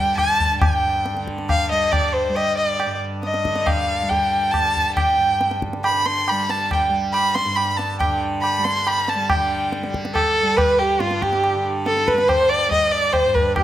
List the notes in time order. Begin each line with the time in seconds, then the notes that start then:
Already playing: G2 D3 G3 G5
0.17 A5, tabla na, tabla ge
0.40 tabla ge
0.55 G2
0.61 G5, tabla na, tabla ge
1.06 tabla te
1.14 D3, tabla te
1.27 tabla ke
1.38 tabla te
1.49 F5, tabla na, tabla ge
1.71 G3 D#5
1.92 D5, tabla na, tabla ge
2.14 C5
2.29 G3
2.36 D#5, tabla na
2.57 D5
2.80 tabla na
2.86 G2
3.23 D#5, tabla te
3.34 tabla te
3.44 D3, tabla ke
3.56 tabla te
3.66 F5, tabla na, tabla ge
4.02 G3
4.09 G5, tabla tin, tabla ge
4.51 A5, tabla na, tabla ge
4.57 G3
4.76 tabla ge
4.96 G5, tabla na, tabla ge
5.16 G2
5.41 tabla te
5.51 tabla te
5.62 tabla ke
5.73 D3, tabla te
5.84 B5, tabla na
6.06 C6, tabla te
6.28 G3 B5, tabla na
6.50 A5, tabla te
6.71 G5, tabla na, tabla ge
6.89 G3
7.13 B5, tabla na
7.35 C6, tabla te
7.45 G2
7.56 B5, tabla na
7.77 A5, tabla te
7.99 G5, tabla na, tabla ge
8.03 D3
8.42 B5, tabla na
8.58 G3
8.64 C6, tabla te
8.87 B5, tabla na
9.08 A5, tabla te
9.15 G3
9.29 D3 G5, tabla na, tabla ge
9.72 tabla te
9.84 G3, tabla te
9.94 tabla ke
10.05 tabla te
10.15 A4, tabla na, tabla ge
10.42 G3
10.57 B4, tabla na, tabla ge
10.79 G4
10.99 G2 F4, tabla te
11.11 tabla te
11.22 G4, tabla ke
11.33 tabla te
11.44 tabla na
11.55 D3
11.86 A4, tabla te
11.97 tabla te
12.08 B4, tabla ke
12.13 G3
12.18 tabla te
12.28 C5, tabla na, tabla ge
12.50 D5
12.68 G3 D#5, tabla tin, tabla ge
12.91 D5
13.13 C5, tabla na, tabla ge
13.25 G2
13.34 B4, tabla ge
13.56 G4, tabla na, tabla ge